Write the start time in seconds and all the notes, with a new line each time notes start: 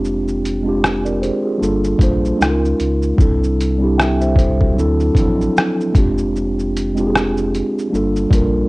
Already playing: F1 G#3 C4 D4 F4 G4
0.05 shaker
0.28 shaker
0.45 closed hi-hat, shaker
0.63 G#3 C4 D4
0.67 F4 G4
0.84 cross-stick, shaker
1.05 A#4 D5, shaker
1.22 G#4 C5, closed hi-hat, shaker
1.45 F4 G#4
1.58 G1 G3 A#3 D4
1.62 F4 A4, shaker
1.84 shaker
1.98 A#1 G3 A#3 D4, kick, closed hi-hat, shaker
2.02 F4 C5
2.25 shaker
2.37 C#2 G#3 C#4 D#4
2.41 F4 A4, cross-stick, shaker
2.49 A#4
2.65 shaker
2.80 C#2, closed hi-hat, shaker
3.02 shaker
3.16 C2 G3 C4 D4, kick, shaker
3.20 E4 A4
3.44 shaker
3.61 closed hi-hat, shaker
3.78 G3 C4 D4
3.83 E4 G4
3.98 E5 G5, cross-stick, shaker
4.21 C5 E5, shaker
4.36 A4 C5, kick, closed hi-hat, shaker
4.60 F#4 A4, kick
4.74 D2 F#3 C4 D4
4.79 E4 A4, shaker
5.00 shaker
5.14 A1 F3 C4 D4, kick, closed hi-hat, shaker
5.18 F#3 E4 A4
5.41 shaker
5.57 cross-stick, shaker
5.81 shaker
5.92 F1 G#3 C4 D4, kick, closed hi-hat, shaker
5.97 F4 G4
6.18 shaker
6.36 shaker
6.59 shaker
6.77 closed hi-hat, shaker
6.94 G#3 C4 D4, shaker
6.99 F4 G4
7.07 G#4
7.15 cross-stick, shaker
7.37 shaker
7.55 closed hi-hat, shaker
7.79 shaker
7.90 G1 G3 A#3 D4
7.94 F4 A4, shaker
8.16 shaker
8.29 A#1 G3 A#3 D4, kick, closed hi-hat, shaker
8.34 F4 A#4